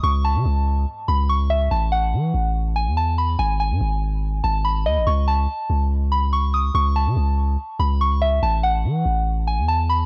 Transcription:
<<
  \new Staff \with { instrumentName = "Synth bell" } { \time 4/4 \key a \lydian \tempo 4 = 143 cis'''8 a''2 b''8 cis'''8 e''8 | a''8 fis''4. r8 gis''8 a''8 b''8 | gis''8 gis''2 a''8 b''8 dis''8 | cis'''8 a''4. r8 b''8 cis'''8 dis'''8 |
cis'''8 a''2 b''8 cis'''8 e''8 | a''8 fis''4. r8 gis''8 a''8 b''8 | }
  \new Staff \with { instrumentName = "808-style bass" } { \clef bass \time 4/4 \key a \lydian cis,8. cis16 cis,4 r8 cis,4. | a,,4 e8 a,,4~ a,,16 e,4~ e,16 | gis,,8. gis,16 gis,,4. gis,,4 dis,16 gis,,16 | cis,4 r8 cis,2~ cis,8 |
cis,8. cis16 cis,4 r8 cis,4. | a,,4 e8 a,,4~ a,,16 e,4~ e,16 | }
>>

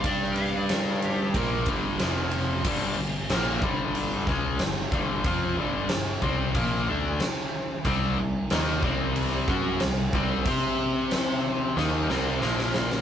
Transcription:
<<
  \new Staff \with { instrumentName = "Lead electric guitar" } { \time 4/4 \key c \major \tempo 4 = 92 d''16 bes'16 f''16 d''16 bes'8 g'8 r2 | r1 | r1 | r1 |
r1 | }
  \new Staff \with { instrumentName = "Overdriven electric guitar" } { \clef bass \time 4/4 \key c \major <g d' g'>2 <bes, f bes>8 <g, d g>8 <f, c f>4 | r1 | r1 | <c g c'>8 <c g>8 <ees bes ees'>8 <c g c'>4 <fis cis' fis'>8 <c g>8 <c g c'>8 |
<c' g' c''>2 <ees bes ees'>8 <c g c'>8 <bes, f bes>4 | }
  \new Staff \with { instrumentName = "Overdriven electric guitar" } { \clef bass \time 4/4 \key c \major <g d' g'>2 <bes, f bes>8 <g, d g>8 <f, c f>4 | <g, d g>8 <g, d>8 <bes, f bes>8 <g, d g>4 <cis aes cis'>8 <g, d>8 <g, d g>8 | <f c' f'>8 <g, d g>8 <g, d>8 <c g c'>8 <bes, f bes>8 <d a d'>8 r4 | <c g c'>8 <c g>8 <ees bes ees'>8 <c g c'>4 <fis cis' fis'>8 <c g>8 <c g c'>8 |
<c' g' c''>2 <ees bes ees'>8 <c g c'>8 <bes, f bes>4 | }
  \new Staff \with { instrumentName = "Overdriven electric guitar" } { \clef bass \time 4/4 \key c \major <g d' g'>2 <bes, f bes>8 <g, d g>8 <f, c f>4 | <g, d g>8 <g, d>8 <bes, f bes>8 <g, d g>4 <cis aes cis'>8 <g, d>8 <g, d g>8 | <f c' f'>8 <g, d g>8 <g, d>8 <c g c'>8 <bes, f bes>8 <d a d'>8 r4 | <c g c'>8 <c g>8 <ees bes ees'>8 <c g c'>4 <fis cis' fis'>8 <c g>8 <c g c'>8 |
<c' g' c''>2 <ees bes ees'>8 <c g c'>8 <bes, f bes>4 | }
  \new Staff \with { instrumentName = "Picked electric bass" } { \clef bass \time 4/4 \key c \major g,2 bes,,8 g,,8 f,,4 | g,,8 g,,8 bes,,8 g,,4 cis,8 g,,8 g,,8 | f,8 g,,8 g,,8 c,8 bes,,8 d,8 r4 | c,8 c,8 ees,8 c,4 fis,8 c,8 c,8 |
c2 ees,8 c,8 bes,,4 | }
  \new DrumStaff \with { instrumentName = "Drums" } \drummode { \time 4/4 <bd cymr>8 cymr8 <cymr sn>8 cymr8 <bd cymr>8 <bd cymr>8 <cymr sn>8 cymr8 | <cymc bd>4 <cymc sn>8 bd8 cymc8 <bd sn>8 <cymc sn>8 <bd sn>8 | <cymc bd>4 <cymc sn>8 bd8 <cymc bd>4 <cymc sn>4 | <cymc bd>4 <cymc sn>8 bd8 cymc8 <bd sn>8 <cymc sn>8 <bd sn>8 |
<cymc bd>4 <cymc sn>4 sn8 sn8 sn16 sn16 sn16 sn16 | }
>>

